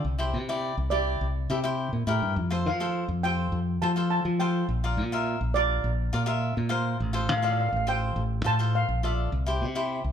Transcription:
Already playing: steel pan G5
0.04 fingered electric bass C2
0.19 cavaquinho E4 G4 C5
0.34 fingered electric bass C3
0.49 cavaquinho E4 G4 D5
0.77 fingered electric bass C2
0.90 cavaquinho E4 G4 D5, steel pan D5
1.21 fingered electric bass C2
1.50 fingered electric bass C3, cavaquinho E4 G4 A4
1.64 cavaquinho E4 G4 C5
1.93 fingered electric bass A#2
2.07 fingered electric bass A2, cavaquinho E4 G4 A#4
2.22 fingered electric bass G2
2.36 fingered electric bass F2
2.50 cavaquinho F4 A4 C5
2.66 fingered electric bass F3, steel pan F5
2.80 cavaquinho F4 A4 C5
3.08 fingered electric bass F2
3.23 cavaquinho F4 A4 C5, steel pan G5
3.52 fingered electric bass F2
3.82 fingered electric bass F3, cavaquinho F4 A4 C5, steel pan A5
3.96 cavaquinho F4 A4 C5
4.10 steel pan A5
4.25 fingered electric bass F3
4.40 cavaquinho F4 A4 C5, steel pan G5
4.69 fingered electric bass A#1
4.84 cavaquinho F4 A#4 D5
4.97 fingered electric bass A#2
5.12 cavaquinho F4 A#4 E5
5.41 fingered electric bass A#1
5.54 cavaquinho F4 A#4 D5, steel pan D5
5.84 fingered electric bass A#1
6.13 fingered electric bass A#2, cavaquinho F4 A#4 D5
6.26 cavaquinho F4 A#4 E5
6.57 fingered electric bass A#2
6.69 cavaquinho F4 A#4 C5
7.00 fingered electric bass A1
7.13 cavaquinho F4 A4 C5
7.29 fingered electric bass A2, steel pan F5
7.37 steel pan F5
7.42 cavaquinho F4 A4 D5, steel pan F5
7.53 steel pan F5
7.60 steel pan F5
7.69 fingered electric bass A1, steel pan F5
7.76 steel pan F5
7.87 cavaquinho F4 A4 C5, steel pan G5
8.16 fingered electric bass A1
8.44 fingered electric bass A2, cavaquinho F4 A4 C5, steel pan A5
8.59 cavaquinho F4 A4 C5
8.75 steel pan F5
8.89 fingered electric bass A#1
9.03 cavaquinho F4 A4 D5, steel pan E5
9.32 fingered electric bass C2
9.46 cavaquinho E4 G4 C5
9.61 fingered electric bass C3
9.75 cavaquinho E4 G4 C5
10.04 fingered electric bass C2

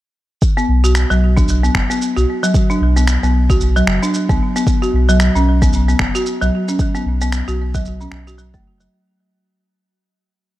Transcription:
0.42 kick, shaker
0.57 marimba B3, shaker
0.69 sub bass B1
0.84 marimba F#4, shaker
0.95 finger snap, shaker
1.10 sub bass B1, marimba F#3, shaker
1.37 marimba D4, kick, shaker
1.48 sub bass B1, shaker
1.63 marimba B3, shaker
1.75 sub bass F#1, finger snap, kick
1.90 marimba B3, shaker
2.02 shaker
2.17 sub bass B1, marimba F#4, shaker
2.43 marimba F#3, shaker
2.54 kick, shaker
2.70 marimba D4, shaker
2.81 sub bass B1
2.96 marimba B3, shaker
3.08 finger snap, shaker
3.23 sub bass B1, marimba B3, shaker
3.50 marimba F#4, kick, shaker
3.60 sub bass B1, shaker
3.76 marimba F#3, shaker
3.87 sub bass F#1, finger snap
4.03 marimba D4, shaker
4.14 shaker
4.29 sub bass B1, marimba B3, kick, shaker
4.56 marimba B3, shaker
4.67 kick, shaker
4.82 marimba F#4, shaker
4.93 sub bass B1
5.09 marimba F#3, shaker
5.20 finger snap, shaker
5.35 sub bass B1, marimba C#4, shaker
5.62 marimba B3, kick, shaker
5.73 sub bass B1, shaker
5.89 marimba B3, shaker
5.99 sub bass F#1, finger snap, kick
6.15 marimba F#4, shaker
6.26 shaker
6.41 sub bass B1, marimba F#3, shaker
6.68 marimba C#4, shaker
6.79 kick, shaker
6.95 marimba B3, shaker
7.06 sub bass B1
7.21 marimba B3, shaker
7.32 finger snap, shaker
7.48 sub bass B1, marimba F#4, shaker
7.75 marimba F#3, kick, shaker
7.85 sub bass B1, shaker
8.01 marimba C#4, shaker
8.12 sub bass B1, finger snap
8.27 marimba F#4, shaker
8.38 marimba F#3, shaker
8.54 sub bass F#1, marimba A3, kick, shaker
8.80 marimba F#3, shaker

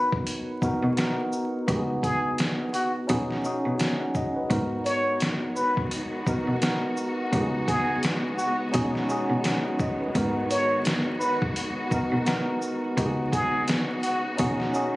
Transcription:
Already playing: cello G#2, tine electric piano B3 D#4 F#4 A#4 B4
0.12 kick
0.27 closed hi-hat
0.62 tine electric piano B3 D#4 F#4 A#4, kick, shaker
0.83 cello B2
0.97 tine electric piano B3 D#4 F#4 A#4, snare, closed hi-hat
1.32 shaker
1.67 cello C#2, tine electric piano B3 D#4 F#4 G4, kick, closed hi-hat
1.76 tine electric piano G#4
2.03 muted trumpet G#4, kick, closed hi-hat, shaker
2.38 snare, closed hi-hat
2.74 muted trumpet F#4, closed hi-hat, shaker
3.07 cello B2, tine electric piano C#4 D#4 F#4 G#4, kick, closed hi-hat
3.31 snare
3.44 tine electric piano C#4 D#4 F#4 G#4, shaker
3.65 cello B2
3.79 snare, closed hi-hat
4.00 tine electric piano F#5
4.15 tine electric piano D#5, kick, shaker
4.36 tine electric piano B4
4.50 cello G#2, string section D#3 G#3 B3 F#4, tine electric piano B3 D#4 F#4 A#4, kick, closed hi-hat
4.85 muted trumpet C#5, closed hi-hat, shaker
5.20 snare, closed hi-hat
5.56 muted trumpet B4, shaker
5.77 kick
5.91 closed hi-hat
6.26 tine electric piano B3 D#4 F#4 A#4, kick, shaker
6.48 cello B2
6.62 tine electric piano B3 D#4 F#4 A#4, snare, closed hi-hat
6.97 shaker
7.32 cello C#2, string section C#3, tine electric piano B3 D#4 F#4 G4, kick, closed hi-hat
7.41 tine electric piano G#4
7.68 muted trumpet G#4, kick, closed hi-hat, shaker
8.03 snare, closed hi-hat
8.37 muted trumpet F#4, shaker
8.72 cello B2, string section D#3, tine electric piano C#4 D#4 F#4 G#4, kick, closed hi-hat
8.95 snare
9.09 tine electric piano C#4 D#4 F#4 G#4, shaker
9.30 cello B2
9.44 snare, closed hi-hat
9.65 tine electric piano F#5
9.79 tine electric piano D#5, kick, shaker
10.01 tine electric piano B4
10.13 cello G#2, tine electric piano B3 D#4 F#4, string section F#4, kick, closed hi-hat
10.18 tine electric piano A#4
10.51 muted trumpet C#5, closed hi-hat, shaker
10.85 snare, closed hi-hat
11.19 muted trumpet B4, shaker
11.42 kick
11.56 closed hi-hat
11.91 tine electric piano B3 D#4 F#4 A#4, kick, shaker
12.12 cello B2
12.26 tine electric piano B3 D#4 F#4 A#4, snare, closed hi-hat
12.62 shaker
12.97 cello C#2, string section C#3 B3 F#4, tine electric piano B3 D#4 F#4 G4, kick, closed hi-hat
13.06 tine electric piano G#4
13.33 muted trumpet G#4, kick, closed hi-hat, shaker
13.68 snare, closed hi-hat
14.03 muted trumpet F#4, closed hi-hat, shaker
14.37 cello B2, string section D#3, tine electric piano C#4 D#4 F#4 G#4, kick, closed hi-hat
14.60 snare
14.73 tine electric piano C#4 D#4 F#4 G#4, shaker

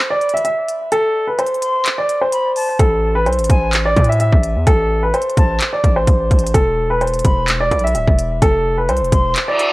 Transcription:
0.11 grand piano D5
0.21 closed hi-hat
0.29 closed hi-hat
0.34 grand piano E5, closed hi-hat
0.45 grand piano E5, closed hi-hat
0.68 closed hi-hat
0.92 grand piano A4, closed hi-hat
1.27 grand piano B4
1.39 grand piano C5, closed hi-hat
1.47 closed hi-hat
1.54 closed hi-hat
1.62 flute C6, closed hi-hat
1.86 clap, closed hi-hat
1.98 grand piano D5
2.09 closed hi-hat
2.21 grand piano C5
2.32 flute B5, closed hi-hat
2.56 flute A5, open hi-hat
2.79 808-style bass A1, grand piano A4, kick, closed hi-hat
3.15 grand piano B4
3.26 808-style bass B1, grand piano C5, closed hi-hat
3.32 closed hi-hat
3.39 808-style bass A1, closed hi-hat
3.44 closed hi-hat
3.50 808-style bass A1, flute G#5, kick, closed hi-hat
3.73 clap, closed hi-hat
3.85 grand piano D5
3.96 808-style bass A2, kick, closed hi-hat
4.04 closed hi-hat
4.09 grand piano E5, closed hi-hat
4.20 grand piano E5, closed hi-hat
4.32 808-style bass A1, kick
4.43 closed hi-hat
4.56 808-style bass E2
4.67 808-style bass A1, grand piano A4, kick, closed hi-hat
5.03 grand piano B4
5.14 grand piano C5, closed hi-hat
5.22 closed hi-hat
5.29 closed hi-hat
5.37 808-style bass A1, flute A5, kick, closed hi-hat
5.61 clap, closed hi-hat
5.73 grand piano D5
5.84 808-style bass A1, kick, closed hi-hat
5.96 grand piano C5
6.07 808-style bass A1, kick, closed hi-hat
6.31 808-style bass A1, kick, closed hi-hat
6.39 closed hi-hat
6.47 closed hi-hat
6.54 808-style bass E1, grand piano A4, kick, closed hi-hat
6.90 grand piano B4
7.01 grand piano C5, closed hi-hat
7.07 closed hi-hat
7.14 closed hi-hat
7.19 closed hi-hat
7.25 808-style bass E1, flute B5, kick, closed hi-hat
7.48 clap, closed hi-hat
7.61 grand piano D5
7.72 808-style bass B1, kick, closed hi-hat
7.79 closed hi-hat
7.84 grand piano E5, closed hi-hat
7.95 808-style bass D1, grand piano E5, closed hi-hat
8.08 808-style bass E1, kick
8.19 closed hi-hat
8.42 808-style bass F1, grand piano A4, kick, closed hi-hat
8.78 grand piano B4
8.89 808-style bass C2, grand piano C5, closed hi-hat
8.97 closed hi-hat
9.01 808-style bass F1, closed hi-hat
9.12 808-style bass E1, flute C6, kick, closed hi-hat
9.36 clap, closed hi-hat, reverse cymbal
9.48 grand piano D5
9.59 closed hi-hat

